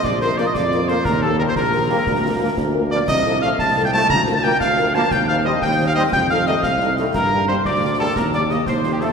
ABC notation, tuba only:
X:1
M:6/8
L:1/8
Q:3/8=118
K:Bb
V:1 name="Tuba" clef=bass
B,,,3 F,,3 | E,,3 B,,,3 | D,,3 D,,3 | C,,3 C,,3 |
D,,3 D,,3 | E,,3 E,,3 | F,,3 C,,3 | G,,3 D,,3 |
E,,3 E,,3 |]